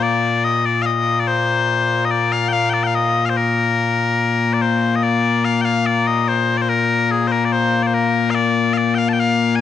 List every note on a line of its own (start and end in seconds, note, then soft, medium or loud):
0.00 9.61 A#2 medium
0.00 9.61 A#3 medium
0.00 0.44 D5 loud
0.44 0.66 D#5 medium
0.66 0.82 D5 medium
0.82 1.20 D#5 medium
0.82 0.86 F5 medium
1.20 1.28 D5 medium
1.28 2.05 C5 medium
2.05 2.11 D#5 medium
2.11 2.32 D5 medium
2.32 2.48 F5 medium
2.48 2.53 G5 medium
2.53 2.70 F5 medium
2.70 2.83 D5 medium
2.70 2.73 G5 medium
2.83 2.95 F5 medium
2.83 2.87 G5 medium
2.95 3.25 D#5 medium
3.25 3.29 F5 medium
3.29 3.37 C5 medium
3.37 4.53 A#4 medium
4.53 4.62 D5 medium
4.62 4.95 C5 medium
4.95 5.03 D#5 medium
5.03 5.45 D5 loud
5.45 5.61 F5 medium
5.61 5.86 F5 medium
5.61 5.65 G5 medium
5.86 6.07 D5 medium
6.07 6.28 D#5 medium
6.28 6.57 C5 medium
6.57 6.62 D5 medium
6.62 6.69 C5 medium
6.69 7.11 A#4 medium
7.11 7.27 G#4 medium
7.27 7.32 C5 medium
7.32 7.45 A#4 medium
7.45 7.53 D5 medium
7.53 7.83 C5 medium
7.83 7.87 D5 medium
7.87 7.94 C5 medium
7.94 8.30 A#4 medium
8.30 8.35 F5 loud
8.35 8.73 D5 loud
8.73 8.77 F5 medium
8.77 8.95 D5 medium
8.95 9.09 F5 loud
8.95 8.98 G5 loud
9.09 9.13 A5 medium
9.13 9.20 G5 medium
9.20 9.56 F5 loud
9.56 9.61 G#5 medium